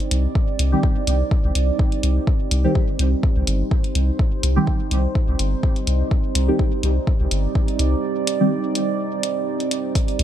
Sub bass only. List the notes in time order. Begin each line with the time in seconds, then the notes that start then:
0.11 C2
0.59 C2
1.07 C2
1.44 C2
1.55 C2
2.03 C2
2.51 C2
2.99 C2
3.36 C2
3.47 G1
3.95 C2
4.43 C2
4.91 C2
5.28 C2
5.39 G1
5.87 C2
6.35 C2
6.83 C2
7.20 C2
7.31 G1
7.79 C2
10.19 C2